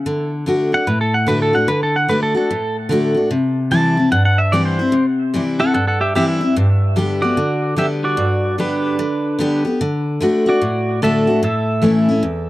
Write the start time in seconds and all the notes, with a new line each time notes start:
0.06 D3
0.46 D3 A3 D4 F#4
0.72 D4 F#4 F#5
0.87 A2 B4
1.01 A4
1.14 F#5
1.27 D3 A3 D4 F#4 B4
1.42 A4
1.53 D4 F#4 F#5
1.68 D3 B4
1.83 A4
1.96 F#5
2.08 D3 A3 D4 F#4 B4
2.23 A4
2.35 D4 F#4 A4
2.51 A2
2.89 D3 A3 D4 F#4
3.14 D4 F#4
3.31 C3
3.71 E3 G3 C4 E4 A5
3.97 C4 E4
4.12 G2 F#5
4.25 F#5
4.38 E5
4.52 E3 G3 C4 E4 D5
4.65 C5
4.79 C4 E4
4.92 C3
5.34 E3 G3 C4 E4
5.59 C4 E4 A4 F#5
5.74 G2 A4 F#5
5.87 A4 F#5
6.01 G4 E5
6.15 E3 G3 C4 E4 G4 E5
6.28 E5
6.41 C4 E4
6.56 G2
6.96 D3 G3 B3 G4
7.22 B3 F#4 G4 D5
7.37 D3
7.76 D3 G3 B3 G4 E5
8.04 F#4 D5
8.17 G2
8.58 D3 G3 B3 D4 G4 B4
8.99 D3
9.39 D3 G3 B3 G4
9.65 B3 G4
9.81 D3
10.21 D3 A3 D4 F#4
10.46 D4 F#4 D5
10.62 A2
11.02 D3 A3 D4 F#4 A4 E5
11.27 D4 F#4
11.43 A2 A4 E5
11.82 E3 A3 C#4 E4
12.09 C#4 E4
12.23 E2